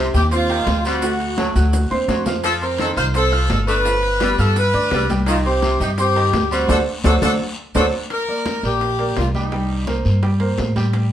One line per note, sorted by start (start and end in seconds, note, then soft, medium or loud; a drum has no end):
0.00 0.25 C3 medium
0.14 0.63 D#2 medium
0.14 0.28 G4 medium
0.14 0.23 G4 loud
0.14 0.28 G5 medium
0.14 0.29 G6 medium
0.14 high bongo soft
0.14 high conga soft
0.14 short guiro medium
0.14 maracas medium
0.31 0.46 C4 medium
0.31 0.82 F4 loud
0.31 0.46 C5 medium
0.31 0.46 C6 medium
0.31 high bongo medium
0.31 high conga soft
0.31 high timbale medium
0.31 long guiro medium
0.31 maracas medium
0.49 0.68 D#3 medium
0.49 0.78 G4 medium
0.49 0.78 G5 medium
0.49 0.79 G6 medium
0.49 high bongo soft
0.49 high conga soft
0.49 high timbale medium
0.49 maracas soft
0.67 1.50 D2 medium
0.67 high bongo medium
0.67 low bongo medium
0.67 high conga medium
0.67 high timbale medium
0.67 low timbale medium
0.67 short guiro medium
0.67 maracas soft
0.85 1.14 G3 medium
0.85 0.99 C4 medium
0.85 1.52 F#4 medium
0.85 1.00 C5 medium
0.85 1.00 C6 medium
0.85 high conga soft
0.85 short guiro medium
0.85 maracas medium
1.02 1.31 A3 medium
1.02 1.32 F#4 medium
1.02 1.32 F#5 medium
1.02 high bongo medium
1.02 high conga soft
1.02 high timbale medium
1.02 long guiro medium
1.02 maracas medium
1.20 high bongo soft
1.20 high conga soft
1.20 high timbale medium
1.20 maracas soft
1.37 1.79 F#3 medium
1.37 1.52 A3 medium
1.37 1.52 A4 medium
1.37 1.52 A5 medium
1.37 high bongo medium
1.37 high conga loud
1.37 high timbale medium
1.37 short guiro medium
1.37 maracas soft
1.56 1.88 D2 loud
1.56 1.85 F#4 medium
1.56 1.85 F#5 medium
1.56 1.85 F#6 medium
1.56 high conga soft
1.56 short guiro medium
1.56 maracas medium
1.73 high bongo medium
1.73 high conga soft
1.73 high timbale medium
1.73 long guiro medium
1.73 maracas medium
1.90 2.07 D#2 medium
1.90 2.20 C4 medium
1.90 2.20 C5 medium
1.90 2.20 C6 medium
1.90 high bongo medium
1.90 high conga soft
1.90 high timbale medium
1.90 maracas soft
2.08 2.91 F2 medium
2.08 2.27 F#3 medium
2.08 low bongo medium
2.08 high conga medium
2.08 high timbale medium
2.08 short guiro medium
2.08 maracas soft
2.26 2.55 F3 medium
2.26 2.55 F4 medium
2.26 2.56 F5 medium
2.26 low bongo medium
2.26 high conga medium
2.26 low timbale medium
2.26 short guiro medium
2.26 maracas medium
2.44 2.63 F3 medium
2.44 2.52 A4 loud
2.44 high bongo medium
2.44 high conga soft
2.44 high timbale medium
2.44 long guiro medium
2.44 maracas medium
2.61 2.91 C4 medium
2.61 2.78 A#4 medium
2.61 2.91 C5 medium
2.61 2.91 C6 medium
2.61 high bongo soft
2.61 high conga soft
2.61 maracas soft
2.79 3.09 D#3 medium
2.79 2.88 A4 loud
2.79 high bongo medium
2.79 high conga medium
2.79 high timbale medium
2.79 short guiro medium
2.79 maracas soft
2.97 3.46 C2 loud
2.97 3.12 F4 medium
2.97 3.05 C5 loud
2.97 3.12 F5 medium
2.97 3.12 F6 medium
2.97 high bongo soft
2.97 high conga soft
2.97 short guiro medium
2.97 maracas medium
3.14 3.29 C4 medium
3.14 3.48 A4 loud
3.14 3.30 C5 medium
3.14 3.30 C6 medium
3.14 high bongo medium
3.14 high conga soft
3.14 high timbale medium
3.14 long guiro medium
3.14 maracas medium
3.32 3.52 F3 medium
3.32 3.61 F4 medium
3.32 3.62 F5 medium
3.32 3.62 F6 medium
3.32 high bongo soft
3.32 high conga soft
3.32 high timbale medium
3.32 maracas soft
3.50 4.33 G1 medium
3.50 3.58 A4 medium
3.50 high bongo medium
3.50 low bongo medium
3.50 high conga medium
3.50 high timbale medium
3.50 low timbale medium
3.50 short guiro medium
3.50 maracas soft
3.68 3.97 A3 medium
3.68 3.82 D4 medium
3.68 4.35 B4 loud
3.68 3.82 D5 medium
3.68 3.83 D6 medium
3.68 high conga soft
3.68 short guiro medium
3.68 maracas medium
3.85 4.15 F3 medium
3.85 4.15 F4 medium
3.85 4.15 F5 medium
3.85 high bongo medium
3.85 high conga soft
3.85 high timbale medium
3.85 long guiro medium
3.85 maracas medium
4.03 high bongo soft
4.03 high conga soft
4.03 high timbale medium
4.03 maracas soft
4.20 4.62 G3 medium
4.20 4.35 B3 medium
4.20 4.36 B4 medium
4.20 4.36 B5 medium
4.20 high bongo medium
4.20 high conga loud
4.20 high timbale loud
4.20 short guiro medium
4.20 maracas soft
4.38 4.72 G2 loud
4.38 4.68 F4 medium
4.38 4.57 A4 loud
4.38 4.68 F5 medium
4.38 4.68 F6 medium
4.38 high conga soft
4.38 short guiro medium
4.38 maracas medium
4.56 5.06 B4 loud
4.56 high bongo medium
4.56 high conga soft
4.56 high timbale medium
4.56 long guiro medium
4.56 maracas medium
4.74 4.91 D2 medium
4.74 5.03 D4 medium
4.74 5.03 D5 medium
4.74 5.04 D6 medium
4.74 high bongo soft
4.74 high conga soft
4.74 high timbale medium
4.74 maracas soft
4.91 5.75 C2 medium
4.91 5.10 G3 medium
4.91 high bongo medium
4.91 low bongo medium
4.91 high conga medium
4.91 low timbale medium
4.91 short guiro medium
4.91 maracas soft
5.09 5.39 G3 medium
5.09 5.39 G4 medium
5.09 5.39 G5 medium
5.09 high bongo soft
5.09 high conga medium
5.09 high timbale medium
5.09 short guiro medium
5.09 maracas medium
5.26 5.46 D#3 medium
5.26 5.36 F4 medium
5.26 high bongo medium
5.26 high conga soft
5.26 high timbale medium
5.26 long guiro medium
5.26 maracas medium
5.45 5.74 C4 medium
5.45 5.79 G4 medium
5.45 5.74 C5 medium
5.45 5.75 C6 medium
5.45 high bongo soft
5.45 high conga soft
5.45 maracas soft
5.62 5.92 C3 medium
5.62 high bongo medium
5.62 high conga medium
5.62 high timbale medium
5.62 short guiro medium
5.62 maracas soft
5.80 6.30 G2 medium
5.80 5.89 D#4 medium
5.80 5.95 G4 medium
5.80 5.96 G5 medium
5.80 5.96 G6 medium
5.80 high bongo soft
5.80 high conga soft
5.80 short guiro medium
5.80 maracas medium
5.98 6.13 C4 medium
5.98 6.48 G4 loud
5.98 6.13 C5 medium
5.98 6.14 C6 medium
5.98 high bongo medium
5.98 high conga soft
5.98 high timbale medium
5.98 long guiro medium
5.98 maracas medium
6.15 6.34 D#3 medium
6.15 6.45 G4 medium
6.15 6.45 G5 medium
6.15 6.46 G6 medium
6.15 high bongo soft
6.15 high conga soft
6.15 high timbale medium
6.15 maracas soft
6.33 6.66 D2 medium
6.33 high bongo medium
6.33 low bongo medium
6.33 high conga medium
6.33 high timbale medium
6.33 low timbale medium
6.33 short guiro medium
6.33 maracas soft
6.51 6.80 G3 medium
6.51 6.66 C4 medium
6.51 6.68 F#4 medium
6.51 6.66 C5 medium
6.51 6.66 C6 medium
6.51 high conga soft
6.51 short guiro medium
6.51 maracas medium
6.68 6.82 D2 loud
6.68 6.78 D4 medium
6.68 6.78 F#4 loud
6.68 6.77 A4 loud
6.68 6.80 A4 loud
6.68 6.80 C5 loud
6.68 6.80 D5 loud
6.68 low bongo medium
6.68 high conga loud
6.68 high timbale loud
6.68 long guiro loud
6.68 maracas loud
7.04 7.18 D2 loud
7.04 7.46 F#3 medium
7.04 7.13 D4 medium
7.04 7.13 F#4 loud
7.04 7.16 A4 medium
7.04 7.13 A4 loud
7.04 7.16 C5 medium
7.04 7.16 D5 medium
7.04 low bongo loud
7.04 high conga loud
7.04 high timbale loud
7.04 long guiro medium
7.04 maracas medium
7.22 7.35 D2 loud
7.22 7.31 D4 loud
7.22 7.31 F#4 loud
7.22 7.34 A4 loud
7.22 7.31 A4 loud
7.22 7.34 C5 medium
7.22 7.34 D5 medium
7.22 low bongo loud
7.22 high conga loud
7.22 high timbale loud
7.22 long guiro loud
7.22 maracas loud
7.75 7.88 D2 medium
7.75 7.94 F#3 medium
7.75 7.85 D4 loud
7.75 7.84 F#4 loud
7.75 7.87 A4 loud
7.75 7.84 A4 medium
7.75 7.87 C5 loud
7.75 7.87 D5 loud
7.75 low bongo loud
7.75 high conga loud
7.75 high timbale medium
7.75 long guiro medium
7.75 maracas loud
8.10 8.60 A#4 loud
8.10 high bongo medium
8.10 high conga soft
8.10 high timbale medium
8.10 long guiro medium
8.28 8.58 A#3 medium
8.28 8.58 A#4 medium
8.28 8.58 D5 medium
8.28 high conga soft
8.46 high bongo medium
8.46 high conga loud
8.46 high timbale medium
8.46 low timbale medium
8.46 short guiro medium
8.63 9.13 A#1 medium
8.63 8.93 A#3 medium
8.63 9.17 G4 loud
8.63 8.93 A#4 medium
8.63 8.93 D5 medium
8.63 high conga soft
8.63 short guiro medium
8.81 high bongo medium
8.81 high conga soft
8.81 high timbale medium
8.81 long guiro medium
8.99 9.28 A#3 medium
8.99 9.28 A#4 medium
8.99 9.29 D5 medium
8.99 high conga soft
8.99 high timbale medium
9.17 10.00 C2 medium
9.17 9.25 F4 medium
9.17 high bongo medium
9.17 low bongo medium
9.17 high conga medium
9.17 high timbale medium
9.17 low timbale medium
9.17 short guiro medium
9.35 9.49 G3 medium
9.35 9.85 D#4 medium
9.35 9.49 G4 medium
9.35 9.50 G5 medium
9.35 high conga medium
9.35 short guiro medium
9.52 9.81 G3 medium
9.52 9.81 G4 medium
9.52 9.82 G5 medium
9.52 high bongo medium
9.52 high conga soft
9.52 high timbale medium
9.52 long guiro medium
9.70 high bongo soft
9.70 high conga soft
9.87 10.17 A#3 medium
9.87 10.17 A#4 medium
9.87 10.17 C5 medium
9.87 high bongo medium
9.87 high conga medium
9.87 high timbale medium
9.87 low timbale medium
9.87 short guiro medium
10.05 10.55 G2 medium
10.05 high bongo soft
10.05 high conga soft
10.05 short guiro medium
10.23 10.37 G3 medium
10.23 10.38 G4 medium
10.23 10.38 G5 medium
10.23 high bongo medium
10.23 high conga soft
10.23 high timbale medium
10.23 long guiro medium
10.40 10.69 A#3 medium
10.40 10.70 A#4 medium
10.40 10.70 C5 medium
10.40 high conga soft
10.40 high timbale medium
10.58 11.12 A2 medium
10.58 high bongo medium
10.58 low bongo medium
10.58 high conga medium
10.58 low timbale medium
10.58 short guiro medium
10.76 11.05 G3 medium
10.76 11.05 G4 medium
10.76 11.05 G5 medium
10.76 high bongo soft
10.76 high conga medium
10.76 high timbale medium
10.76 short guiro medium
10.93 high bongo medium
10.93 high conga soft
10.93 high timbale medium
10.93 long guiro medium